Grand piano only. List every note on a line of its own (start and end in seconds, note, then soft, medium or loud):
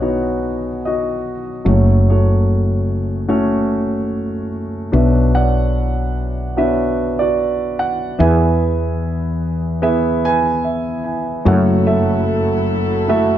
0.00 1.62 B1 soft
0.00 1.62 B2 soft
0.00 0.02 B3 soft
0.00 1.22 B3 medium
0.00 0.02 D#4 soft
0.00 1.22 D#4 soft
0.00 0.02 F#4 soft
0.00 0.86 F#4 soft
0.00 0.03 C#5 medium
0.00 1.22 C#5 medium
0.00 0.85 D#5 medium
0.00 1.68 F#5 medium
0.00 1.67 G#5 medium
0.85 1.63 F#4 medium
0.85 1.69 D#5 medium
1.65 4.88 F#1 soft
1.65 4.88 F#2 soft
1.65 2.85 A3 medium
1.65 2.85 C#4 soft
1.65 1.68 F#4 medium
1.65 1.67 C#5 medium
1.65 2.05 C#5 medium
1.69 2.10 F#4 soft
1.69 2.10 A4 soft
2.10 3.27 F#4 soft
2.10 3.68 A4 soft
2.10 3.28 C#5 medium
3.28 4.48 A3 medium
3.28 4.48 C#4 medium
3.28 4.48 F#4 medium
3.28 4.49 C#5 medium
4.92 8.15 B1 soft
4.92 8.15 B2 soft
4.92 6.12 B3 medium
4.92 6.12 D4 medium
4.92 6.12 F#4 medium
4.92 6.12 B4 medium
4.92 5.32 E5 medium
4.97 5.35 C#5 soft
5.35 6.59 C#5 medium
5.35 6.94 D5 medium
5.35 6.60 F#5 medium
6.57 7.75 B3 medium
6.57 7.76 D4 medium
6.57 7.20 F#4 medium
6.57 7.76 B4 medium
6.57 8.17 C#5 medium
6.57 7.14 E5 medium
7.19 8.17 F#4 medium
7.19 7.75 D5 medium
7.79 8.21 F#5 medium
8.19 11.42 E2 medium
8.19 11.42 E3 medium
8.19 9.38 B3 medium
8.19 9.38 E4 medium
8.19 9.39 G#4 medium
8.19 10.23 B4 medium
8.19 9.38 E5 medium
8.19 10.24 G#5 medium
9.82 11.02 B3 medium
9.82 11.02 E4 medium
9.82 11.02 G#4 medium
9.82 10.63 E5 medium
10.25 11.43 B4 medium
10.25 11.03 G#5 loud
10.64 11.02 E5 medium
11.04 11.43 G#5 medium
11.45 13.38 F#1 medium
11.45 13.38 F#2 medium
11.45 12.65 A3 medium
11.45 12.65 E4 medium
11.45 12.65 F#4 medium
11.45 11.86 A4 medium
11.45 12.65 C#5 medium
11.45 11.89 F#5 medium
11.87 13.08 A4 medium
11.87 13.08 E5 medium
13.08 13.38 A3 medium
13.08 13.38 E4 medium
13.08 13.38 F#4 medium
13.08 13.38 A4 medium
13.08 13.38 E5 medium